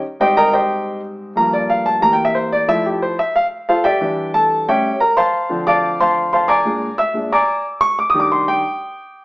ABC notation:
X:1
M:4/4
L:1/8
Q:1/4=181
K:F
V:1 name="Grand piano"
z [Gc_eg] [Begb] [Gceg]3 z2 | b d f a (3b g e c d | e G c e f z [FAcf] [Gdeg]- | [Gdeg]2 [Aa]2 [G^ceg]2 [Bb] [=cfac']- |
[K:Dm] [cfac']2 [dfad']2 [cfac']2 [cfac'] [d^gbd']- | [d^gbd']2 [ee']2 [d_abd']2 z ^c' | (3d' _e' d' c' g4- g |]
V:2 name="Grand piano" clef=bass
z [_A,,G,C]6- [A,,G,C] | [G,,F,B,]4 [C,E,B,]4 | [F,A,E]3 z4 z | [E,G,D]4 [A,,G,^C] z3 |
[K:Dm] z [D,F,C]6- [D,F,C] | [B,,_A,D] z2 [B,,A,D] z4 | z [_E,G,D]3 z4 |]